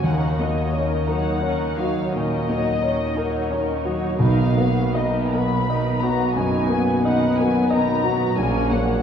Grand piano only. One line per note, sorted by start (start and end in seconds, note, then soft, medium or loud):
0.04 2.09 D#2 soft
0.39 0.94 A#3 soft
0.73 1.29 C#5 soft
1.08 1.64 A#4 soft
1.42 1.99 C#5 soft
1.79 2.35 F#4 soft
2.16 2.70 A#2 soft
2.49 3.03 A#3 soft
2.83 3.37 C#5 soft
3.17 3.71 A#4 soft
3.52 4.06 C#5 soft
3.85 4.20 F#4 soft
4.19 6.32 B1 soft
4.57 5.18 A#3 soft
4.95 5.54 D#5 soft
5.33 5.89 A#4 soft
5.70 6.23 D#5 soft
6.03 6.57 F#4 soft
6.36 6.91 F#2 soft
6.69 7.24 A#3 soft
7.05 7.59 D#5 soft
7.38 7.91 A#4 soft
7.70 8.24 D#5 soft
8.04 8.37 F#4 soft
8.37 9.02 A#1 soft
8.71 9.02 A#3 soft